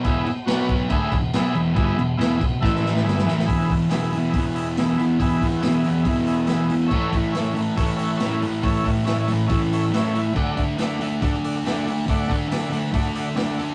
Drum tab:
CC |x-x-x-x-x-x-x-x-|x-x-x-x---------|----------------|----------------|
HH |----------------|----------------|o-o-o-o-o-o-o-o-|o-o-o-o-o-o-o-o-|
SD |----o-------o---|----o---oooooooo|----o-------o---|----o----o--o---|
BD |o-----o-o-o-----|o-----o-o-------|o-o-----o-------|o-o-----o-------|

CC |x---------------|----------------|x---------------|----------------|
HH |--o-o-o-o-o-o-o-|o-o-o-o-o-o-o-o-|--o-o-o-o-o-o-o-|o-o-o-o-o-o-o-o-|
SD |----o-------o---|----o----o--o---|----o----o--o---|----o-------o---|
BD |o-o-----o-------|o-o-----o-------|o-o-----o-------|o-o-----o-------|